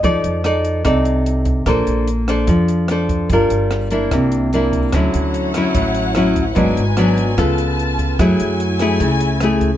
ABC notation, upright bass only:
X:1
M:4/4
L:1/8
Q:1/4=147
K:Dlyd
V:1 name="Upright bass" clef=bass
=F,, F,,3 =C,,4 | _B,,, B,,,3 =F,,4 | =G,,, G,,,3 =C,,4 | D,, D,,3 A,,,4 |
G,,, G,,,3 C,,4 | F,, F,,3 C,,4 |]